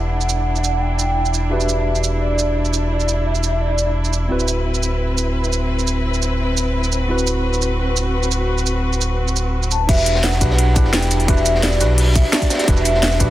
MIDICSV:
0, 0, Header, 1, 6, 480
1, 0, Start_track
1, 0, Key_signature, 1, "minor"
1, 0, Tempo, 348837
1, 165, Time_signature, 4, 2, 24, 8
1, 18302, End_track
2, 0, Start_track
2, 0, Title_t, "Soft synth lead"
2, 0, Program_c, 0, 80
2, 0, Note_on_c, 0, 78, 107
2, 154, Note_off_c, 0, 78, 0
2, 163, Note_on_c, 0, 78, 118
2, 1121, Note_on_c, 0, 79, 118
2, 1142, Note_off_c, 0, 78, 0
2, 2073, Note_off_c, 0, 79, 0
2, 2081, Note_on_c, 0, 76, 115
2, 2988, Note_off_c, 0, 76, 0
2, 3045, Note_on_c, 0, 74, 97
2, 3950, Note_off_c, 0, 74, 0
2, 4005, Note_on_c, 0, 74, 99
2, 4488, Note_on_c, 0, 76, 91
2, 4508, Note_off_c, 0, 74, 0
2, 4969, Note_on_c, 0, 74, 79
2, 4989, Note_off_c, 0, 76, 0
2, 5687, Note_off_c, 0, 74, 0
2, 13366, Note_on_c, 0, 81, 117
2, 13604, Note_on_c, 0, 76, 112
2, 13625, Note_off_c, 0, 81, 0
2, 14088, Note_on_c, 0, 78, 106
2, 14109, Note_off_c, 0, 76, 0
2, 14557, Note_off_c, 0, 78, 0
2, 14565, Note_on_c, 0, 78, 107
2, 15012, Note_off_c, 0, 78, 0
2, 15046, Note_on_c, 0, 79, 109
2, 15525, Note_on_c, 0, 76, 115
2, 15546, Note_off_c, 0, 79, 0
2, 16007, Note_on_c, 0, 74, 98
2, 16028, Note_off_c, 0, 76, 0
2, 16475, Note_off_c, 0, 74, 0
2, 16484, Note_on_c, 0, 74, 96
2, 16728, Note_on_c, 0, 76, 101
2, 16749, Note_off_c, 0, 74, 0
2, 16960, Note_off_c, 0, 76, 0
2, 16968, Note_on_c, 0, 74, 97
2, 17413, Note_off_c, 0, 74, 0
2, 17448, Note_on_c, 0, 76, 110
2, 18302, Note_off_c, 0, 76, 0
2, 18302, End_track
3, 0, Start_track
3, 0, Title_t, "Tine electric piano"
3, 0, Program_c, 1, 4
3, 0, Control_c, 1, 64, 127
3, 0, Note_on_c, 1, 62, 72
3, 0, Note_on_c, 1, 64, 63
3, 0, Note_on_c, 1, 67, 65
3, 0, Note_on_c, 1, 71, 78
3, 2048, Note_off_c, 1, 62, 0
3, 2055, Note_off_c, 1, 64, 0
3, 2062, Note_off_c, 1, 67, 0
3, 2064, Note_on_c, 1, 62, 70
3, 2069, Note_off_c, 1, 71, 0
3, 2077, Note_on_c, 1, 66, 65
3, 2090, Note_on_c, 1, 67, 69
3, 2104, Note_on_c, 1, 71, 79
3, 5887, Note_off_c, 1, 62, 0
3, 5893, Note_off_c, 1, 66, 0
3, 5900, Note_off_c, 1, 67, 0
3, 5904, Note_on_c, 1, 60, 74
3, 5907, Note_off_c, 1, 71, 0
3, 5918, Note_on_c, 1, 64, 66
3, 5931, Note_on_c, 1, 66, 64
3, 5941, Control_c, 1, 64, 0
3, 5945, Note_on_c, 1, 71, 80
3, 6187, Control_c, 1, 64, 127
3, 9727, Note_off_c, 1, 60, 0
3, 9734, Note_off_c, 1, 64, 0
3, 9740, Note_off_c, 1, 66, 0
3, 9745, Note_on_c, 1, 60, 72
3, 9747, Note_off_c, 1, 71, 0
3, 9760, Note_on_c, 1, 64, 70
3, 9773, Note_on_c, 1, 66, 66
3, 9787, Note_on_c, 1, 71, 82
3, 13567, Note_off_c, 1, 60, 0
3, 13575, Note_off_c, 1, 64, 0
3, 13581, Note_off_c, 1, 66, 0
3, 13586, Note_on_c, 1, 62, 80
3, 13588, Note_off_c, 1, 71, 0
3, 13599, Note_on_c, 1, 66, 70
3, 13612, Note_on_c, 1, 67, 68
3, 13621, Control_c, 1, 64, 0
3, 13627, Note_on_c, 1, 71, 80
3, 13837, Control_c, 1, 64, 127
3, 14288, Note_off_c, 1, 62, 0
3, 14294, Note_off_c, 1, 66, 0
3, 14301, Note_off_c, 1, 67, 0
3, 14308, Note_off_c, 1, 71, 0
3, 14316, Note_on_c, 1, 62, 76
3, 14322, Note_on_c, 1, 66, 71
3, 14329, Note_on_c, 1, 67, 75
3, 14336, Note_on_c, 1, 71, 86
3, 14773, Note_off_c, 1, 62, 0
3, 14776, Note_off_c, 1, 66, 0
3, 14779, Note_off_c, 1, 67, 0
3, 14783, Note_off_c, 1, 71, 0
3, 14788, Note_on_c, 1, 62, 86
3, 14802, Note_on_c, 1, 64, 83
3, 14815, Note_on_c, 1, 67, 84
3, 14828, Note_on_c, 1, 71, 91
3, 15489, Note_off_c, 1, 62, 0
3, 15496, Note_off_c, 1, 64, 0
3, 15502, Note_off_c, 1, 67, 0
3, 15506, Note_on_c, 1, 62, 85
3, 15509, Note_off_c, 1, 71, 0
3, 15519, Note_on_c, 1, 66, 81
3, 15532, Note_on_c, 1, 67, 74
3, 15546, Note_on_c, 1, 71, 93
3, 16208, Note_off_c, 1, 62, 0
3, 16214, Note_off_c, 1, 66, 0
3, 16221, Note_off_c, 1, 67, 0
3, 16228, Note_off_c, 1, 71, 0
3, 16235, Note_on_c, 1, 62, 78
3, 16242, Note_on_c, 1, 66, 73
3, 16250, Note_on_c, 1, 67, 71
3, 16256, Note_on_c, 1, 71, 88
3, 16692, Note_off_c, 1, 62, 0
3, 16696, Note_off_c, 1, 66, 0
3, 16700, Note_off_c, 1, 67, 0
3, 16703, Note_off_c, 1, 71, 0
3, 16956, Note_on_c, 1, 62, 86
3, 16962, Note_on_c, 1, 66, 76
3, 16969, Note_on_c, 1, 67, 74
3, 16976, Note_on_c, 1, 76, 88
3, 17408, Note_off_c, 1, 62, 0
3, 17416, Note_off_c, 1, 66, 0
3, 17419, Note_off_c, 1, 67, 0
3, 17423, Note_off_c, 1, 76, 0
3, 17425, Note_on_c, 1, 62, 81
3, 17439, Note_on_c, 1, 66, 71
3, 17451, Note_on_c, 1, 67, 71
3, 17465, Note_on_c, 1, 71, 84
3, 18127, Note_off_c, 1, 62, 0
3, 18134, Note_off_c, 1, 66, 0
3, 18140, Note_off_c, 1, 67, 0
3, 18147, Note_off_c, 1, 71, 0
3, 18154, Note_on_c, 1, 62, 83
3, 18160, Note_on_c, 1, 66, 74
3, 18167, Note_on_c, 1, 67, 77
3, 18174, Note_on_c, 1, 71, 91
3, 18302, Note_off_c, 1, 62, 0
3, 18302, Note_off_c, 1, 66, 0
3, 18302, Note_off_c, 1, 67, 0
3, 18302, Note_off_c, 1, 71, 0
3, 18302, End_track
4, 0, Start_track
4, 0, Title_t, "String section"
4, 0, Program_c, 2, 48
4, 0, Note_on_c, 2, 62, 66
4, 0, Note_on_c, 2, 64, 67
4, 5868, Note_off_c, 2, 62, 0
4, 5927, Note_on_c, 2, 60, 71
4, 5928, Note_on_c, 2, 71, 80
4, 9708, Note_off_c, 2, 64, 0
4, 9767, Note_on_c, 2, 66, 69
4, 13551, Note_off_c, 2, 60, 0
4, 13552, Note_off_c, 2, 71, 0
4, 13568, Note_off_c, 2, 66, 0
4, 13606, Note_on_c, 2, 62, 73
4, 13608, Note_on_c, 2, 64, 73
4, 18302, Note_off_c, 2, 62, 0
4, 18302, Note_off_c, 2, 64, 0
4, 18302, End_track
5, 0, Start_track
5, 0, Title_t, "Sub bass"
5, 0, Program_c, 3, 38
5, 0, Note_on_c, 3, 28, 84
5, 5903, Note_off_c, 3, 28, 0
5, 5926, Note_on_c, 3, 26, 84
5, 13582, Note_off_c, 3, 26, 0
5, 13606, Note_on_c, 3, 28, 99
5, 14326, Note_on_c, 3, 35, 110
5, 14347, Note_off_c, 3, 28, 0
5, 14928, Note_on_c, 3, 28, 83
5, 14948, Note_off_c, 3, 35, 0
5, 15507, Note_off_c, 3, 28, 0
5, 15526, Note_on_c, 3, 28, 97
5, 16246, Note_on_c, 3, 35, 107
5, 16267, Note_off_c, 3, 28, 0
5, 16829, Note_off_c, 3, 35, 0
5, 17446, Note_on_c, 3, 28, 99
5, 18166, Note_on_c, 3, 35, 110
5, 18186, Note_off_c, 3, 28, 0
5, 18302, Note_off_c, 3, 35, 0
5, 18302, End_track
6, 0, Start_track
6, 0, Title_t, "Drums"
6, 288, Note_on_c, 9, 82, 26
6, 405, Note_off_c, 9, 82, 0
6, 405, Note_on_c, 9, 82, 58
6, 542, Note_off_c, 9, 82, 0
6, 768, Note_on_c, 9, 82, 25
6, 886, Note_off_c, 9, 82, 0
6, 886, Note_on_c, 9, 82, 57
6, 1024, Note_off_c, 9, 82, 0
6, 1365, Note_on_c, 9, 82, 60
6, 1503, Note_off_c, 9, 82, 0
6, 1727, Note_on_c, 9, 82, 25
6, 1845, Note_off_c, 9, 82, 0
6, 1845, Note_on_c, 9, 82, 54
6, 1982, Note_off_c, 9, 82, 0
6, 2209, Note_on_c, 9, 82, 27
6, 2326, Note_off_c, 9, 82, 0
6, 2326, Note_on_c, 9, 82, 59
6, 2463, Note_off_c, 9, 82, 0
6, 2689, Note_on_c, 9, 82, 26
6, 2806, Note_off_c, 9, 82, 0
6, 2806, Note_on_c, 9, 82, 57
6, 2944, Note_off_c, 9, 82, 0
6, 3286, Note_on_c, 9, 82, 60
6, 3424, Note_off_c, 9, 82, 0
6, 3648, Note_on_c, 9, 82, 26
6, 3767, Note_off_c, 9, 82, 0
6, 3767, Note_on_c, 9, 82, 53
6, 3905, Note_off_c, 9, 82, 0
6, 4129, Note_on_c, 9, 82, 26
6, 4247, Note_off_c, 9, 82, 0
6, 4247, Note_on_c, 9, 82, 55
6, 4385, Note_off_c, 9, 82, 0
6, 4610, Note_on_c, 9, 82, 24
6, 4727, Note_off_c, 9, 82, 0
6, 4727, Note_on_c, 9, 82, 51
6, 4865, Note_off_c, 9, 82, 0
6, 5208, Note_on_c, 9, 82, 56
6, 5345, Note_off_c, 9, 82, 0
6, 5569, Note_on_c, 9, 82, 24
6, 5687, Note_off_c, 9, 82, 0
6, 5687, Note_on_c, 9, 82, 52
6, 5825, Note_off_c, 9, 82, 0
6, 6049, Note_on_c, 9, 82, 27
6, 6166, Note_off_c, 9, 82, 0
6, 6166, Note_on_c, 9, 82, 57
6, 6303, Note_off_c, 9, 82, 0
6, 6529, Note_on_c, 9, 82, 25
6, 6646, Note_off_c, 9, 82, 0
6, 6646, Note_on_c, 9, 82, 53
6, 6784, Note_off_c, 9, 82, 0
6, 7126, Note_on_c, 9, 82, 58
6, 7264, Note_off_c, 9, 82, 0
6, 7488, Note_on_c, 9, 82, 25
6, 7606, Note_off_c, 9, 82, 0
6, 7606, Note_on_c, 9, 82, 54
6, 7743, Note_off_c, 9, 82, 0
6, 7968, Note_on_c, 9, 82, 26
6, 8085, Note_off_c, 9, 82, 0
6, 8085, Note_on_c, 9, 82, 55
6, 8223, Note_off_c, 9, 82, 0
6, 8448, Note_on_c, 9, 82, 26
6, 8565, Note_off_c, 9, 82, 0
6, 8565, Note_on_c, 9, 82, 54
6, 8702, Note_off_c, 9, 82, 0
6, 9045, Note_on_c, 9, 82, 61
6, 9183, Note_off_c, 9, 82, 0
6, 9408, Note_on_c, 9, 82, 27
6, 9526, Note_off_c, 9, 82, 0
6, 9526, Note_on_c, 9, 82, 53
6, 9664, Note_off_c, 9, 82, 0
6, 9887, Note_on_c, 9, 82, 28
6, 10005, Note_off_c, 9, 82, 0
6, 10005, Note_on_c, 9, 82, 61
6, 10142, Note_off_c, 9, 82, 0
6, 10367, Note_on_c, 9, 82, 27
6, 10484, Note_off_c, 9, 82, 0
6, 10484, Note_on_c, 9, 82, 58
6, 10622, Note_off_c, 9, 82, 0
6, 10964, Note_on_c, 9, 82, 61
6, 11101, Note_off_c, 9, 82, 0
6, 11326, Note_on_c, 9, 82, 26
6, 11444, Note_off_c, 9, 82, 0
6, 11444, Note_on_c, 9, 82, 58
6, 11581, Note_off_c, 9, 82, 0
6, 11807, Note_on_c, 9, 82, 29
6, 11925, Note_off_c, 9, 82, 0
6, 11925, Note_on_c, 9, 82, 64
6, 12062, Note_off_c, 9, 82, 0
6, 12287, Note_on_c, 9, 82, 27
6, 12405, Note_off_c, 9, 82, 0
6, 12405, Note_on_c, 9, 82, 58
6, 12542, Note_off_c, 9, 82, 0
6, 12767, Note_on_c, 9, 82, 29
6, 12885, Note_off_c, 9, 82, 0
6, 12885, Note_on_c, 9, 82, 65
6, 13023, Note_off_c, 9, 82, 0
6, 13248, Note_on_c, 9, 82, 29
6, 13366, Note_off_c, 9, 82, 0
6, 13366, Note_on_c, 9, 82, 57
6, 13504, Note_off_c, 9, 82, 0
6, 13605, Note_on_c, 9, 36, 124
6, 13606, Note_on_c, 9, 42, 94
6, 13606, Note_on_c, 9, 49, 106
6, 13606, Note_on_c, 9, 51, 91
6, 13729, Note_on_c, 9, 82, 31
6, 13743, Note_off_c, 9, 36, 0
6, 13743, Note_off_c, 9, 42, 0
6, 13743, Note_off_c, 9, 49, 0
6, 13744, Note_off_c, 9, 51, 0
6, 13845, Note_on_c, 9, 51, 62
6, 13846, Note_off_c, 9, 82, 0
6, 13846, Note_on_c, 9, 42, 73
6, 13846, Note_on_c, 9, 82, 62
6, 13972, Note_on_c, 9, 38, 55
6, 13982, Note_off_c, 9, 51, 0
6, 13983, Note_off_c, 9, 42, 0
6, 13983, Note_off_c, 9, 82, 0
6, 14076, Note_on_c, 9, 51, 89
6, 14080, Note_off_c, 9, 38, 0
6, 14080, Note_on_c, 9, 38, 119
6, 14085, Note_off_c, 9, 38, 0
6, 14085, Note_on_c, 9, 38, 122
6, 14085, Note_on_c, 9, 42, 101
6, 14208, Note_on_c, 9, 82, 28
6, 14209, Note_off_c, 9, 38, 0
6, 14209, Note_on_c, 9, 38, 62
6, 14214, Note_off_c, 9, 51, 0
6, 14222, Note_off_c, 9, 42, 0
6, 14326, Note_off_c, 9, 82, 0
6, 14326, Note_on_c, 9, 36, 65
6, 14326, Note_on_c, 9, 42, 68
6, 14326, Note_on_c, 9, 82, 64
6, 14329, Note_on_c, 9, 51, 77
6, 14346, Note_off_c, 9, 38, 0
6, 14454, Note_on_c, 9, 38, 56
6, 14463, Note_off_c, 9, 36, 0
6, 14464, Note_off_c, 9, 42, 0
6, 14464, Note_off_c, 9, 82, 0
6, 14466, Note_off_c, 9, 51, 0
6, 14561, Note_on_c, 9, 51, 80
6, 14566, Note_on_c, 9, 42, 97
6, 14592, Note_off_c, 9, 38, 0
6, 14699, Note_off_c, 9, 51, 0
6, 14703, Note_off_c, 9, 42, 0
6, 14806, Note_on_c, 9, 36, 116
6, 14806, Note_on_c, 9, 42, 76
6, 14806, Note_on_c, 9, 82, 68
6, 14810, Note_on_c, 9, 51, 68
6, 14925, Note_on_c, 9, 38, 39
6, 14943, Note_off_c, 9, 36, 0
6, 14944, Note_off_c, 9, 42, 0
6, 14944, Note_off_c, 9, 82, 0
6, 14947, Note_off_c, 9, 51, 0
6, 15045, Note_off_c, 9, 38, 0
6, 15045, Note_on_c, 9, 38, 127
6, 15045, Note_on_c, 9, 42, 99
6, 15050, Note_off_c, 9, 38, 0
6, 15050, Note_on_c, 9, 38, 121
6, 15051, Note_on_c, 9, 51, 93
6, 15169, Note_off_c, 9, 42, 0
6, 15169, Note_on_c, 9, 42, 39
6, 15169, Note_on_c, 9, 82, 29
6, 15187, Note_off_c, 9, 38, 0
6, 15188, Note_off_c, 9, 51, 0
6, 15285, Note_off_c, 9, 42, 0
6, 15285, Note_off_c, 9, 82, 0
6, 15285, Note_on_c, 9, 42, 69
6, 15285, Note_on_c, 9, 82, 63
6, 15288, Note_on_c, 9, 51, 72
6, 15409, Note_off_c, 9, 42, 0
6, 15409, Note_on_c, 9, 42, 39
6, 15423, Note_off_c, 9, 82, 0
6, 15425, Note_off_c, 9, 51, 0
6, 15526, Note_off_c, 9, 42, 0
6, 15526, Note_on_c, 9, 36, 127
6, 15526, Note_on_c, 9, 42, 96
6, 15528, Note_on_c, 9, 51, 88
6, 15649, Note_on_c, 9, 82, 28
6, 15663, Note_off_c, 9, 36, 0
6, 15664, Note_off_c, 9, 42, 0
6, 15665, Note_off_c, 9, 51, 0
6, 15765, Note_off_c, 9, 82, 0
6, 15765, Note_on_c, 9, 42, 71
6, 15765, Note_on_c, 9, 51, 63
6, 15765, Note_on_c, 9, 82, 65
6, 15889, Note_on_c, 9, 38, 53
6, 15902, Note_off_c, 9, 51, 0
6, 15903, Note_off_c, 9, 42, 0
6, 15903, Note_off_c, 9, 82, 0
6, 16005, Note_off_c, 9, 38, 0
6, 16005, Note_on_c, 9, 38, 119
6, 16005, Note_on_c, 9, 42, 104
6, 16006, Note_on_c, 9, 51, 90
6, 16014, Note_off_c, 9, 38, 0
6, 16014, Note_on_c, 9, 38, 124
6, 16128, Note_on_c, 9, 82, 28
6, 16142, Note_off_c, 9, 42, 0
6, 16144, Note_off_c, 9, 51, 0
6, 16152, Note_off_c, 9, 38, 0
6, 16245, Note_off_c, 9, 82, 0
6, 16245, Note_on_c, 9, 42, 67
6, 16245, Note_on_c, 9, 82, 59
6, 16246, Note_on_c, 9, 38, 47
6, 16247, Note_on_c, 9, 51, 77
6, 16383, Note_off_c, 9, 42, 0
6, 16383, Note_off_c, 9, 82, 0
6, 16384, Note_off_c, 9, 38, 0
6, 16384, Note_off_c, 9, 51, 0
6, 16484, Note_on_c, 9, 42, 105
6, 16498, Note_on_c, 9, 46, 80
6, 16622, Note_off_c, 9, 42, 0
6, 16636, Note_off_c, 9, 46, 0
6, 16723, Note_on_c, 9, 51, 79
6, 16725, Note_on_c, 9, 42, 79
6, 16725, Note_on_c, 9, 82, 64
6, 16726, Note_on_c, 9, 36, 118
6, 16861, Note_off_c, 9, 51, 0
6, 16863, Note_off_c, 9, 36, 0
6, 16863, Note_off_c, 9, 42, 0
6, 16863, Note_off_c, 9, 82, 0
6, 16957, Note_on_c, 9, 51, 87
6, 16965, Note_on_c, 9, 38, 127
6, 16965, Note_on_c, 9, 42, 107
6, 16978, Note_off_c, 9, 38, 0
6, 16978, Note_on_c, 9, 38, 112
6, 17088, Note_off_c, 9, 42, 0
6, 17088, Note_on_c, 9, 36, 60
6, 17088, Note_on_c, 9, 42, 40
6, 17088, Note_on_c, 9, 82, 27
6, 17095, Note_off_c, 9, 51, 0
6, 17115, Note_off_c, 9, 38, 0
6, 17203, Note_on_c, 9, 38, 101
6, 17206, Note_off_c, 9, 42, 0
6, 17206, Note_off_c, 9, 82, 0
6, 17206, Note_on_c, 9, 42, 67
6, 17206, Note_on_c, 9, 82, 60
6, 17209, Note_on_c, 9, 51, 73
6, 17226, Note_off_c, 9, 36, 0
6, 17269, Note_off_c, 9, 51, 0
6, 17269, Note_on_c, 9, 51, 66
6, 17271, Note_off_c, 9, 38, 0
6, 17271, Note_on_c, 9, 38, 83
6, 17328, Note_off_c, 9, 38, 0
6, 17328, Note_on_c, 9, 38, 82
6, 17329, Note_off_c, 9, 42, 0
6, 17329, Note_on_c, 9, 42, 39
6, 17334, Note_off_c, 9, 51, 0
6, 17334, Note_on_c, 9, 51, 73
6, 17344, Note_off_c, 9, 82, 0
6, 17388, Note_off_c, 9, 51, 0
6, 17388, Note_on_c, 9, 51, 72
6, 17394, Note_off_c, 9, 38, 0
6, 17394, Note_on_c, 9, 38, 79
6, 17442, Note_off_c, 9, 51, 0
6, 17442, Note_on_c, 9, 51, 84
6, 17446, Note_on_c, 9, 36, 127
6, 17447, Note_off_c, 9, 42, 0
6, 17447, Note_on_c, 9, 42, 98
6, 17532, Note_off_c, 9, 38, 0
6, 17569, Note_on_c, 9, 82, 29
6, 17580, Note_off_c, 9, 51, 0
6, 17583, Note_off_c, 9, 36, 0
6, 17584, Note_off_c, 9, 42, 0
6, 17685, Note_on_c, 9, 51, 63
6, 17686, Note_off_c, 9, 82, 0
6, 17686, Note_on_c, 9, 42, 72
6, 17686, Note_on_c, 9, 82, 61
6, 17812, Note_on_c, 9, 38, 47
6, 17823, Note_off_c, 9, 51, 0
6, 17824, Note_off_c, 9, 42, 0
6, 17824, Note_off_c, 9, 82, 0
6, 17924, Note_off_c, 9, 38, 0
6, 17924, Note_on_c, 9, 38, 112
6, 17926, Note_off_c, 9, 38, 0
6, 17926, Note_on_c, 9, 38, 126
6, 17926, Note_on_c, 9, 42, 97
6, 17930, Note_on_c, 9, 51, 83
6, 18050, Note_off_c, 9, 38, 0
6, 18050, Note_on_c, 9, 38, 55
6, 18050, Note_on_c, 9, 82, 27
6, 18064, Note_off_c, 9, 42, 0
6, 18068, Note_off_c, 9, 51, 0
6, 18165, Note_on_c, 9, 36, 67
6, 18166, Note_off_c, 9, 82, 0
6, 18166, Note_on_c, 9, 42, 71
6, 18166, Note_on_c, 9, 82, 58
6, 18170, Note_on_c, 9, 51, 66
6, 18187, Note_off_c, 9, 38, 0
6, 18302, Note_off_c, 9, 36, 0
6, 18302, Note_off_c, 9, 42, 0
6, 18302, Note_off_c, 9, 51, 0
6, 18302, Note_off_c, 9, 82, 0
6, 18302, End_track
0, 0, End_of_file